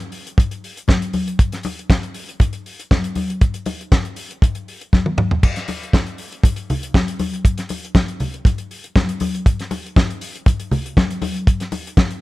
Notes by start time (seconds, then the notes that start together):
0.00 closed hi-hat
0.12 open hi-hat
0.27 closed hi-hat
0.38 kick, closed hi-hat, muted conga
0.51 closed hi-hat
0.64 open hi-hat
0.77 closed hi-hat
0.88 kick, snare, high conga
1.02 closed hi-hat
1.13 open hi-hat, high conga
1.28 closed hi-hat
1.39 kick, closed hi-hat, muted conga
1.52 snare, closed hi-hat
1.63 open hi-hat, muted conga
1.79 closed hi-hat
1.90 kick, snare, high conga
2.03 closed hi-hat
2.14 open hi-hat
2.29 closed hi-hat
2.40 kick, closed hi-hat, muted conga
2.53 closed hi-hat
2.66 open hi-hat
2.79 closed hi-hat
2.91 kick, snare, high conga
3.04 closed hi-hat
3.15 open hi-hat, high conga
3.30 closed hi-hat
3.41 kick, closed hi-hat, muted conga
3.54 closed hi-hat
3.66 open hi-hat, muted conga
3.81 closed hi-hat
3.92 kick, snare, high conga
4.05 closed hi-hat
4.16 open hi-hat
4.31 closed hi-hat
4.42 kick, closed hi-hat, muted conga
4.55 closed hi-hat
4.68 open hi-hat
4.81 closed hi-hat
4.93 kick, snare, high conga
5.06 high tom
5.18 mid tom, high conga
5.31 floor tom
5.43 kick, crash, muted conga
5.56 snare, closed hi-hat
5.68 open hi-hat, muted conga
5.83 closed hi-hat
5.93 kick, snare, high conga
6.06 closed hi-hat
6.18 open hi-hat
6.32 closed hi-hat
6.44 kick, closed hi-hat, muted conga
6.56 closed hi-hat
6.70 open hi-hat, low conga
6.83 closed hi-hat
6.94 kick, snare, high conga
7.08 closed hi-hat
7.19 open hi-hat, high conga
7.33 closed hi-hat
7.45 kick, closed hi-hat
7.58 snare, closed hi-hat
7.69 open hi-hat, muted conga
7.85 closed hi-hat
7.95 kick, snare, high conga
8.08 closed hi-hat
8.20 open hi-hat, low conga
8.34 closed hi-hat
8.45 kick, closed hi-hat, muted conga
8.58 closed hi-hat
8.71 open hi-hat
8.84 closed hi-hat
8.96 kick, snare, high conga
9.09 closed hi-hat
9.20 open hi-hat, high conga
9.35 closed hi-hat
9.46 kick, closed hi-hat, muted conga
9.59 snare, closed hi-hat
9.71 open hi-hat, muted conga
9.86 closed hi-hat
9.96 kick, snare, high conga
10.10 closed hi-hat
10.21 open hi-hat
10.35 closed hi-hat
10.46 kick, closed hi-hat, muted conga
10.60 closed hi-hat
10.71 open hi-hat, low conga
10.86 closed hi-hat
10.97 kick, snare, high conga
11.10 closed hi-hat
11.22 open hi-hat, high conga
11.36 closed hi-hat
11.47 kick, closed hi-hat
11.60 snare, closed hi-hat
11.72 open hi-hat, muted conga
11.87 closed hi-hat
11.97 kick, snare, high conga
12.10 closed hi-hat